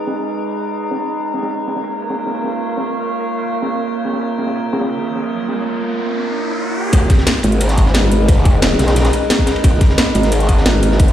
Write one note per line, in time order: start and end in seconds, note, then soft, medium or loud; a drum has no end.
0.00 1.46 G#3 medium
0.00 1.46 D#4 medium
0.00 1.48 G#4 medium
0.00 2.17 G#4 medium
0.00 1.46 B4 medium
0.00 2.54 D#5 medium
0.00 5.57 A#5 medium
0.07 snare medium
0.15 ride medium
0.32 ride medium
0.49 ride medium
0.65 ride medium
0.83 ride medium
0.91 snare medium
1.00 ride medium
1.17 ride medium
1.34 snare soft
1.34 ride medium
1.43 snare soft
1.50 6.89 A#3 medium
1.50 6.89 F4 medium
1.50 6.89 A#4 medium
1.50 5.57 A#4 medium
1.50 6.89 C#5 medium
1.50 ride medium
1.67 snare soft
1.67 ride medium
1.74 5.57 F5 medium
1.74 snare soft
1.84 ride medium
2.02 ride medium
2.10 snare soft
2.15 4.99 C#6 medium
2.15 ride medium
2.26 snare soft
2.35 ride medium
2.44 snare soft
2.51 ride medium
2.69 ride medium
2.77 snare soft
2.86 ride medium
3.03 ride medium
3.20 ride medium
3.37 ride medium
3.54 ride medium
3.62 snare medium
3.70 ride medium
3.87 ride medium
4.04 snare soft
4.04 ride medium
4.13 snare soft
4.21 ride medium
4.21 riser medium
4.38 snare soft
4.38 ride medium
4.47 snare soft
4.55 ride medium
4.73 snare loud
4.73 ride medium
4.81 snare loud
4.81 ride medium
4.89 5.57 D#6 medium
4.89 ride medium
4.98 snare soft
5.07 ride medium
5.15 snare soft
5.24 ride medium
5.40 ride medium
5.48 snare soft
6.93 7.08 G#1 loud
6.93 11.12 G#3 medium
6.93 11.12 D#4 medium
6.93 11.12 G#4 medium
6.93 11.12 A#4 medium
6.93 11.12 B4 medium
6.93 kick loud
6.93 closed hi-hat loud
6.93 ride loud
7.07 11.12 D#5 medium
7.07 kick loud
7.07 snare soft
7.07 closed hi-hat medium
7.07 ride medium
7.18 snare soft
7.27 snare loud
7.27 closed hi-hat loud
7.27 ride medium
7.43 8.41 G#1 loud
7.43 closed hi-hat medium
7.43 ride medium
7.52 closed hi-hat soft
7.61 closed hi-hat loud
7.61 ride loud
7.69 snare soft
7.69 closed hi-hat soft
7.78 kick medium
7.78 closed hi-hat medium
7.78 ride medium
7.86 snare soft
7.94 snare loud
7.94 closed hi-hat loud
7.94 ride medium
8.12 closed hi-hat medium
8.28 kick loud
8.28 closed hi-hat loud
8.28 ride loud
8.41 8.78 F#1 loud
8.45 kick loud
8.45 closed hi-hat medium
8.45 ride medium
8.62 snare loud
8.62 closed hi-hat loud
8.62 ride medium
8.79 9.12 B1 loud
8.79 snare loud
8.79 closed hi-hat medium
8.79 ride medium
8.88 snare loud
8.88 closed hi-hat soft
8.88 ride medium
8.96 snare loud
8.96 closed hi-hat loud
8.96 ride medium
9.05 snare loud
9.05 closed hi-hat soft
9.05 ride medium
9.13 closed hi-hat medium
9.13 ride medium
9.30 snare loud
9.30 closed hi-hat loud
9.30 ride medium
9.39 kick medium
9.47 snare loud
9.47 closed hi-hat medium
9.47 ride medium
9.56 ride medium
9.64 9.80 G#1 loud
9.64 kick loud
9.64 closed hi-hat loud
9.64 ride medium
9.81 kick loud
9.81 snare soft
9.81 closed hi-hat medium
9.81 ride medium
9.89 snare soft
9.98 snare loud
9.98 closed hi-hat loud
9.98 ride medium
10.15 11.09 G#1 loud
10.15 closed hi-hat medium
10.15 ride medium
10.23 snare soft
10.23 closed hi-hat soft
10.32 closed hi-hat loud
10.32 ride medium
10.40 closed hi-hat soft
10.48 kick medium
10.48 closed hi-hat medium
10.48 ride medium
10.58 snare soft
10.66 snare loud
10.66 closed hi-hat loud
10.66 ride medium
10.83 closed hi-hat medium
10.83 ride medium
10.92 snare soft
10.99 kick loud
10.99 closed hi-hat medium
10.99 ride medium
11.08 11.12 G1 loud
11.08 closed hi-hat soft